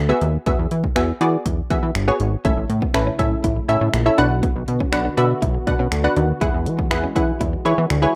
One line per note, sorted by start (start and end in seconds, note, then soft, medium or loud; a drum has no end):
0.00 0.13 D2 medium
0.09 0.29 B3 medium
0.09 0.29 F#4 medium
0.09 0.29 G#4 medium
0.09 0.29 E5 loud
0.21 0.38 D#2 medium
0.21 closed hi-hat medium
0.46 0.54 E2 loud
0.46 0.73 B3 medium
0.46 0.73 F#4 medium
0.46 0.73 G#4 medium
0.46 0.73 E5 loud
0.46 kick loud
0.46 closed hi-hat medium
0.59 0.67 E2 loud
0.71 0.87 E3 loud
0.71 closed hi-hat medium
0.84 kick medium
0.96 1.12 E2 loud
0.96 1.09 B3 loud
0.96 1.09 F#4 medium
0.96 1.09 G#4 medium
0.96 1.09 E5 loud
0.96 finger snap loud
0.96 closed hi-hat medium
1.21 1.37 E3 loud
1.21 1.48 B3 medium
1.21 1.48 F#4 medium
1.21 1.48 G#4 medium
1.21 1.48 D5 medium
1.21 closed hi-hat medium
1.46 1.62 E2 loud
1.46 kick medium
1.46 closed hi-hat loud
1.70 1.78 E3 loud
1.70 1.90 B3 medium
1.70 1.91 F#4 medium
1.70 1.91 G#4 medium
1.70 1.91 E5 loud
1.70 kick loud
1.70 closed hi-hat medium
1.83 1.91 E3 loud
1.95 2.11 G1 medium
1.95 finger snap loud
1.95 closed hi-hat loud
2.08 2.28 B3 medium
2.08 2.28 F#4 medium
2.08 2.28 G#4 medium
2.08 2.28 C#5 loud
2.20 2.36 G#1 medium
2.20 closed hi-hat medium
2.45 2.53 A1 loud
2.45 4.17 C#3 medium
2.45 4.17 A3 medium
2.45 2.53 A3 medium
2.45 2.72 C#4 medium
2.45 4.17 E4 medium
2.45 2.72 E4 medium
2.45 2.72 A4 medium
2.45 2.72 E5 loud
2.45 kick loud
2.45 closed hi-hat medium
2.57 2.65 A1 loud
2.70 2.86 A2 loud
2.70 muted clean electric guitar stroke soft
2.70 closed hi-hat medium
2.82 2.90 B3 medium
2.82 kick medium
2.94 3.11 A1 medium
2.94 3.08 C#4 medium
2.94 3.08 E4 medium
2.94 3.08 A4 medium
2.94 3.08 B4 loud
2.94 finger snap loud
2.94 closed hi-hat medium
3.07 3.15 C#4 medium
3.19 3.35 A2 loud
3.19 3.46 C#4 medium
3.19 3.27 C#4 medium
3.19 3.46 E4 medium
3.19 3.46 A4 medium
3.19 3.46 E5 loud
3.19 kick medium
3.19 closed hi-hat medium
3.44 3.60 A1 loud
3.44 3.52 E4 medium
3.44 kick medium
3.44 closed hi-hat loud
3.56 muted clean electric guitar stroke soft
3.68 3.77 A2 loud
3.68 3.89 C#4 medium
3.68 3.89 E4 medium
3.68 3.89 A4 medium
3.68 3.89 E5 loud
3.68 closed hi-hat medium
3.81 3.89 A2 loud
3.81 3.89 C#4 medium
3.94 4.10 A#1 loud
3.94 finger snap loud
3.94 closed hi-hat medium
4.06 4.18 C#4 medium
4.06 4.18 E4 medium
4.06 4.18 A4 medium
4.06 4.18 E5 medium
4.18 4.43 B1 loud
4.18 6.39 D3 medium
4.18 6.39 B3 medium
4.18 4.78 D4 medium
4.18 4.26 D4 medium
4.18 4.78 F#4 medium
4.18 8.15 F#4 medium
4.18 4.78 B4 medium
4.18 4.78 F#5 loud
4.18 closed hi-hat medium
4.43 4.51 B3 medium
4.43 kick loud
4.43 closed hi-hat medium
4.56 4.64 B1 medium
4.68 4.84 B2 loud
4.68 muted clean electric guitar stroke soft
4.68 closed hi-hat medium
4.80 4.89 C#4 medium
4.80 kick medium
4.92 5.09 B1 loud
4.92 5.06 D4 medium
4.92 5.06 F#4 medium
4.92 5.06 B4 medium
4.92 5.06 F#5 loud
4.92 finger snap loud
4.92 muted clean electric guitar stroke soft
4.92 closed hi-hat medium
5.05 5.13 D4 medium
5.17 5.34 B2 loud
5.17 5.44 D4 medium
5.17 5.26 D4 medium
5.17 5.44 F#4 medium
5.17 5.44 B4 medium
5.17 5.44 E5 loud
5.17 closed hi-hat medium
5.42 5.58 B1 loud
5.42 5.50 E4 medium
5.42 kick medium
5.42 closed hi-hat loud
5.55 muted clean electric guitar stroke soft
5.67 5.75 B2 loud
5.67 5.87 D4 medium
5.67 5.87 F#4 medium
5.67 5.87 B4 medium
5.67 5.87 F#5 loud
5.67 kick loud
5.67 closed hi-hat medium
5.79 5.88 B2 loud
5.79 5.88 C#4 medium
5.92 6.08 D2 loud
5.92 finger snap loud
5.92 closed hi-hat medium
6.04 6.24 D4 medium
6.04 6.24 F#4 medium
6.04 6.24 B4 medium
6.04 6.24 F#5 medium
6.16 6.33 D#2 loud
6.16 6.25 D4 medium
6.16 closed hi-hat medium
6.41 6.50 E2 loud
6.41 8.15 E3 medium
6.41 8.15 G#3 medium
6.41 6.68 E4 medium
6.41 6.50 E4 medium
6.41 6.68 G#4 medium
6.41 6.68 B4 medium
6.41 6.68 F#5 loud
6.41 kick loud
6.41 closed hi-hat medium
6.54 6.68 E2 loud
6.66 6.93 E3 loud
6.66 muted clean electric guitar stroke soft
6.66 closed hi-hat medium
6.79 6.87 B3 medium
6.79 kick medium
6.91 7.07 E2 loud
6.91 7.04 E4 medium
6.91 7.04 G#4 medium
6.91 7.04 B4 medium
6.91 7.05 F#5 loud
6.91 finger snap loud
6.91 muted clean electric guitar stroke soft
6.91 closed hi-hat medium
7.04 7.12 C#4 medium
7.15 7.32 E3 medium
7.15 7.24 C#4 medium
7.15 7.42 E4 medium
7.15 7.43 G#4 medium
7.15 7.43 B4 medium
7.15 7.43 F#5 medium
7.15 kick medium
7.15 closed hi-hat medium
7.41 7.57 E2 loud
7.41 7.49 E4 medium
7.41 kick medium
7.41 closed hi-hat loud
7.53 muted clean electric guitar stroke soft
7.65 7.74 E3 loud
7.65 7.85 E4 medium
7.65 7.85 G#4 medium
7.65 7.86 B4 medium
7.65 7.86 C#5 loud
7.65 closed hi-hat medium
7.78 7.86 E3 loud
7.78 7.86 B3 medium
7.90 8.06 D2 medium
7.90 finger snap loud
7.90 closed hi-hat medium
8.02 8.15 E4 medium
8.02 8.15 G#4 medium
8.02 8.15 B4 medium
8.02 8.15 C#5 loud